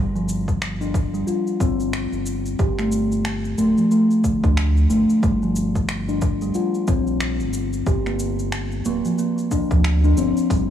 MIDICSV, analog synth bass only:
0, 0, Header, 1, 2, 480
1, 0, Start_track
1, 0, Key_signature, -2, "minor"
1, 0, Tempo, 659341
1, 1886, Time_signature, 4, 2, 24, 8
1, 7790, End_track
2, 0, Start_track
2, 0, Title_t, "Analog synth bass"
2, 0, Program_c, 0, 38
2, 0, Note_on_c, 0, 31, 95
2, 898, Note_off_c, 0, 31, 0
2, 1167, Note_on_c, 0, 31, 80
2, 1507, Note_off_c, 0, 31, 0
2, 1548, Note_on_c, 0, 31, 84
2, 1857, Note_off_c, 0, 31, 0
2, 1887, Note_on_c, 0, 31, 94
2, 2578, Note_off_c, 0, 31, 0
2, 2608, Note_on_c, 0, 26, 82
2, 2723, Note_off_c, 0, 26, 0
2, 3231, Note_on_c, 0, 38, 75
2, 3538, Note_off_c, 0, 38, 0
2, 3566, Note_on_c, 0, 31, 90
2, 3682, Note_off_c, 0, 31, 0
2, 3807, Note_on_c, 0, 31, 99
2, 4738, Note_off_c, 0, 31, 0
2, 5009, Note_on_c, 0, 34, 76
2, 5389, Note_on_c, 0, 31, 82
2, 5400, Note_off_c, 0, 34, 0
2, 5697, Note_off_c, 0, 31, 0
2, 5726, Note_on_c, 0, 31, 95
2, 6417, Note_off_c, 0, 31, 0
2, 6446, Note_on_c, 0, 26, 88
2, 6562, Note_off_c, 0, 26, 0
2, 7069, Note_on_c, 0, 38, 78
2, 7377, Note_off_c, 0, 38, 0
2, 7405, Note_on_c, 0, 31, 91
2, 7522, Note_off_c, 0, 31, 0
2, 7646, Note_on_c, 0, 31, 100
2, 7790, Note_off_c, 0, 31, 0
2, 7790, End_track
0, 0, End_of_file